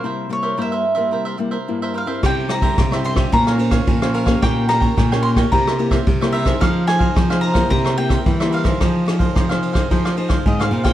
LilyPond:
<<
  \new Staff \with { instrumentName = "Mandolin" } { \time 4/4 \key c \phrygian \tempo 4 = 110 c''8 des''8 e''4. r4 f''8 | g''8 bes''4 c'''8 bes''8. r8. f''8 | g''8 bes''4 c'''8 bes''8. r8. e''8 | f''8 aes''4 bes''8 bes''8 g''4 f''8~ |
f''2. ees''16 f''8 g''16 | }
  \new Staff \with { instrumentName = "Cavaquinho" } { \time 4/4 \key c \phrygian <e' bes' c'' e''>8 r16 <bes' c'' e''>16 <e' bes' c'' e''>16 <bes' c'' e''>8 <bes' c'' e''>16 <e' bes' c'' e''>16 <bes' c'' e''>16 r16 <bes' c'' e''>8 <bes' c'' e''>16 <e' bes' c'' e''>16 <bes' c'' e''>16 | <e' g' c'' e''>8 r16 <g' c'' e''>16 <e' g' c'' e''>16 <g' c'' e''>8 <g' c'' e''>16 <f' bes' des'' f''>16 <bes' des'' f''>16 r16 <bes' des'' f''>8 <bes' des'' f''>16 <f' bes' des'' f''>16 <bes' des'' f''>16 | <g' bes' des'' g''>8 r16 <bes' des'' g''>16 <g' bes' des'' g''>16 <bes' des'' g''>8 <bes' des'' g''>16 <e' bes' c'' e''>16 <bes' c'' e''>16 r16 <bes' c'' e''>8 <bes' c'' e''>16 <e' bes' c'' e''>16 <bes' c'' e''>16 | <ees' aes' c'' f''>8 r16 <aes' c'' f''>16 <ees' aes' c'' f''>16 <aes' c'' f''>8 <aes' c'' f''>16 <e' bes' c'' e''>16 <bes' c'' e''>16 r16 <bes' c'' e''>8 <bes' c'' e''>16 <e' bes' c'' e''>16 <bes' c'' e''>16 |
<ees' aes' c'' f''>8 r16 <aes' c'' f''>16 <ees' aes' c'' f''>16 <aes' c'' f''>8 <aes' c'' f''>16 <ees' aes' c'' f''>16 <aes' c'' f''>16 r16 <aes' c'' f''>8 <aes' c'' f''>16 <ees' aes' c'' f''>16 <aes' c'' f''>16 | }
  \new Staff \with { instrumentName = "Nylon-string guitar" } { \time 4/4 \key c \phrygian << { <g bes e'>8 <g bes e'>8 <g bes e'>8 r16 <g bes e'>8. <g bes e'>16 r16 <g bes e'>8. <g c' e'>16~ | <g c' e'>8 <g c' e'>8. <g c' e'>8 <des' f' c''>8. <des' f' c''>8. <des' f' c''>8 <bes des' g'>16~ | <bes des' g'>8 <bes des' g'>8 r16 <bes des' g'>8 <bes e' g'>8. <bes e' g'>8 r16 <bes e' g'>8 <ees' aes' c''>16~ | <ees' aes' c''>8 <ees' aes' c''>8 r16 <ees' aes' c''>8 <bes e' g'>8. <bes e' g'>8. <bes e' g'>8 <ees' aes' c''>16~ |
<ees' aes' c''>8 <ees' aes' c''>8. <ees' aes' c''>8 <ees' aes' c''>16 <ees' aes' c''>16 r16 <ees' aes' c''>8 r16 <ees' aes' c''>8 <f' aes' des''>16 | } \\ { c4 g,4 c4 g,4 | c4 g,4 bes4 f4 | bes,4 bes,4 c4 g4 | f4 c4 c4 g4 |
f4 c4 f4 c4 | } >> }
  \new Staff \with { instrumentName = "Nylon-string guitar" } { \clef bass \time 4/4 \key c \phrygian r1 | c4 c4 bes,4 bes,4 | bes,4 bes,4 c4 c4 | f4 f4 c4 e4 |
f4 f4 f4 aes,8 bes,8 | }
  \new DrumStaff \with { instrumentName = "Drums" } \drummode { \time 4/4 r4 r4 r4 r4 | <bd cymr ss>8 <cymr ss>16 <bd cymr>16 <bd cymr ss>16 ss16 cymr16 <bd cymr ss>16 <bd cymr>16 ss16 cymr16 <bd cymr ss>16 <bd cymr>16 ss16 cymr16 <bd cymr ss>16 | <bd cymr ss>8 <cymr ss>16 <bd cymr>16 <bd cymr ss>16 ss16 cymr16 <bd cymr ss>16 <bd cymr>16 ss16 cymr16 <bd cymr ss>16 <bd cymr>16 ss16 cymr16 <bd cymr ss>16 | <bd cymr ss>8 <cymr ss>16 <bd cymr>16 <bd cymr ss>16 ss16 cymr16 <bd cymr ss>16 <bd cymr>16 ss16 cymr16 <bd cymr ss>16 <bd cymr>16 ss16 cymr16 <bd cymr ss>16 |
<bd cymr ss>8 <cymr ss>16 <bd cymr>16 <bd cymr ss>16 ss16 cymr16 <bd cymr ss>16 <bd cymr>16 ss16 cymr16 <bd cymr ss>16 <bd cymr>16 ss16 cymr16 <bd cymr ss>16 | }
>>